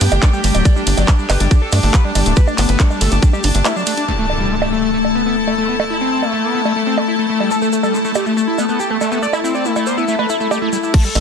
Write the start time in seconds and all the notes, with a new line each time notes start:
Already playing: A3 D4 G4 G5
0.01 G2 B3 G4, open hi-hat, ride, shaker
0.12 G1 F#3 G4, closed hi-hat, high bongo, shaker
0.22 D4 D5, kick, clap, closed hi-hat, ride, shaker
0.33 G3 G4, shaker
0.44 G1 G3 G4, open hi-hat, ride, shaker
0.55 D1 F#3 G4, closed hi-hat, high bongo, shaker
0.65 G3 D5, kick, closed hi-hat, ride, shaker
0.76 G3 D4, shaker
0.87 G1 D4, open hi-hat, ride, shaker
0.97 G1 F#3 D5, closed hi-hat, high bongo, shaker
1.08 G3 D4, kick, clap, closed hi-hat, ride, shaker
1.19 G3 D4, shaker
1.30 G1 G4 B4, clap, open hi-hat, ride, high bongo, shaker
1.40 G1 G3 D4, closed hi-hat, shaker
1.51 D4 G4, kick, closed hi-hat, ride, shaker
1.57 A5
1.62 A4
1.72 G2 A3 D4, open hi-hat, ride, high bongo, shaker
1.83 G1 A3 D4, open hi-hat, shaker
1.94 B4, kick, clap, closed hi-hat, ride, shaker
2.05 G3 D4
2.15 G1 G3 D4, open hi-hat, ride, high bongo, shaker
2.26 D1 A3 D4, closed hi-hat, shaker
2.36 G4 B4, kick, closed hi-hat, ride, shaker
2.47 D4, high bongo, shaker
2.58 G1 B3 D4, clap, open hi-hat, ride, shaker
2.68 G1 B4, closed hi-hat, shaker
2.80 G3 D4, kick, clap, closed hi-hat, ride, shaker
2.90 G3 D4, high bongo, shaker
3.01 G1 A3 A4, open hi-hat, ride, shaker
3.11 G1 A3 D4, closed hi-hat, shaker
3.22 G3 D4, kick, closed hi-hat, ride, shaker
3.33 G3 G4, high bongo, shaker
3.43 G1 D4, open hi-hat, ride, shaker
3.55 G1 A3 D4, closed hi-hat, shaker
3.65 A3 E4, clap, closed hi-hat, ride, high bongo, shaker
3.76 F#3 D4, shaker
3.86 A3 D4, open hi-hat, ride, shaker
3.97 D4, closed hi-hat, shaker
4.08 A3 E4, impact
4.19 A3
4.25 A4
4.30 high bongo
4.40 G3
4.51 A3
4.62 A3, high bongo
4.72 A3
4.83 A3
4.94 A3
5.05 high bongo
5.15 B3
5.26 B3
5.47 A3, high bongo
5.58 A3
5.69 B3
5.80 A3, high bongo
5.90 E4
6.01 C4
6.22 A3, high bongo
6.33 A3
6.44 B3
6.55 B3
6.65 A3, high bongo
6.76 A3
6.87 C4
6.97 G3, high bongo
7.08 E4
7.19 A3
7.30 A3
7.40 G3, high bongo
7.51 A3 A4, shaker
7.62 A3, shaker
7.72 A3, shaker
7.83 G3 A4, high bongo, shaker
7.94 A3, shaker
8.05 A3, shaker
8.15 A3 G4, high bongo, shaker
8.26 A3, shaker
8.37 A3, shaker
8.47 E4
8.58 A3 B3, high bongo, shaker
8.69 A3 B3, shaker
8.80 G4, shaker
8.90 A3
9.01 A3, high bongo, shaker
9.12 A3 B3, shaker
9.22 A3 D5, shaker
9.33 E4, high bongo, shaker
9.44 C4 E4, shaker
9.54 D5, shaker
9.65 A3 E4, shaker
9.76 A3 E4, high bongo, shaker
9.87 B3 C5, shaker
9.97 B3 E4, shaker
10.08 A3 E4, swell, shaker
10.19 A3 B4, high bongo
10.30 E4, shaker
10.40 A3 E4, shaker
10.51 A3 G4, high bongo, shaker
10.62 A3 E4
10.72 G3 E4, shaker
10.83 E4, shaker
10.94 A3 A5, kick, closed hi-hat, crash
11.05 G3 A4
11.15 A1 A3 A4, open hi-hat, high bongo